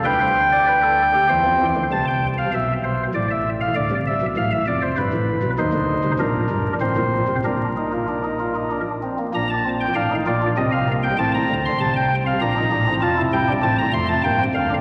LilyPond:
<<
  \new Staff \with { instrumentName = "Pipe organ" } { \time 3/4 \key c \mixolydian \tempo 4 = 98 << { g''2. | a''16 g''8 f''16 e''8 c''8 d''16 e''8 f''16 | d''8 e''8 f''16 e''16 d''16 c''16 b'4 | \key bes \major c''4 bes'4 c''4 |
bes'2~ bes'8 r8 | bes''16 a''8 g''16 f''8 d''8 ees''16 f''8 g''16 | a''16 bes''8 c'''16 a''16 g''8 f''16 bes''4 | a''8 g''8 a''16 bes''16 c'''16 a''16 g''8 f''8 | } \\ { b'16 c''8 d''16 b'16 a'8 g'16 c''4 | r2. | r2. | ees'4 d'4 c'4 |
d'8 ees'16 f'16 d'16 ees'16 f'16 ees'16 d'8 c'16 bes16 | d'8 c'8 d'16 ees'16 f'16 d'16 c'8 bes8 | c'2 d'16 ees'16 d'16 c'16 | f'16 e'8 d'16 c'8 a8 bes16 c'8 d'16 | } >> }
  \new Staff \with { instrumentName = "Pipe organ" } { \clef bass \time 3/4 \key c \mixolydian <d, d>2 <e, e>16 <f, f>16 <e, e>16 <d, d>16 | <c, c>4 <b,, b,>4 <a,, a,>4 | <d, d>16 <c, c>8 <b,, b,>16 <a,, a,>8 <f,, f,>8 <g,, g,>16 <a,, a,>8 <b,, b,>16 | \key bes \major <ees, ees>16 <d, d>8 <c, c>16 <bes,, bes,>8 <g,, g,>8 <a,, a,>16 <bes,, bes,>8 <c, c>16 |
<bes,, bes,>2~ <bes,, bes,>8 r8 | <bes,, bes,>4 <a,, a,>8 <bes,, bes,>8 <c, c>4 | <a,, a,>8 <d, d>8 <c, c>4 <bes,, bes,>8 <a,, a,>8 | <f,, f,>8 <c, c>8 <a,, a,>8 <f,, f,>8 <g,, g,>8 <d, d>8 | }
>>